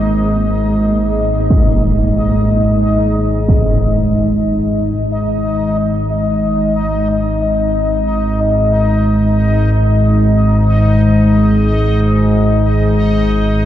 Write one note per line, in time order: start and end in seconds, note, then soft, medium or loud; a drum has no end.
0.00 1.50 G#1 medium
0.00 1.50 G#2 medium
0.00 1.51 G#2 medium
0.00 1.51 A#3 medium
0.00 1.50 D#4 medium
0.00 1.51 G#4 medium
0.00 1.50 D#5 medium
0.00 1.51 D#5 medium
1.50 13.65 G#1 medium
1.50 13.65 G#2 medium
1.50 13.65 D#4 medium
1.50 13.65 D#5 medium
1.50 impact medium
3.49 impact medium